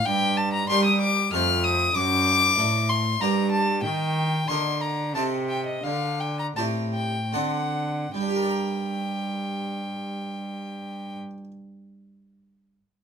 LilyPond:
<<
  \new Staff \with { instrumentName = "Violin" } { \time 3/4 \key g \minor \tempo 4 = 85 g''8 a''16 bes''16 c'''16 ees'''16 d'''8 f'''8 ees'''8 | d'''4. c'''8 bes''8 a''8 | g''4 c'''8 bes''8 a''8 g''16 ees''16 | f''8 g''16 bes''16 a''8 g''8 fis''4 |
g''2.~ | g''2. | }
  \new Staff \with { instrumentName = "Harpsichord" } { \time 3/4 \key g \minor g,4 <g d' g' bes'>4 <f, a a' c''>4 | fis,4 <a, a a' d''>4 <g, bes g' d''>4 | ees4 <d bes bes' ees''>4 <c c' a' ees''>4 | d4 <a, c' g' d''>4 <d c' a' d''>4 |
<g d' g' bes' d'' bes''>2.~ | <g d' g' bes' d'' bes''>2. | }
  \new Staff \with { instrumentName = "Cello" } { \clef bass \time 3/4 \key g \minor g,4 g4 f,4 | fis,4 a,4 g,4 | ees4 d4 c4 | d4 a,4 d4 |
g,2.~ | g,2. | }
>>